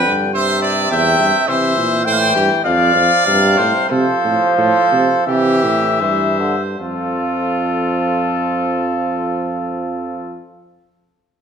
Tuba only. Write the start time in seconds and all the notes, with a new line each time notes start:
0.07 G2
0.91 E2
1.19 G2
1.48 C3
1.77 A#2
2.06 A2
2.35 G2
2.65 F2
2.96 F2
3.27 G2
3.59 A2
3.91 C3
4.24 A2
4.58 A2
4.92 C3
5.27 C3
5.63 A2
6.01 G2
6.80 F2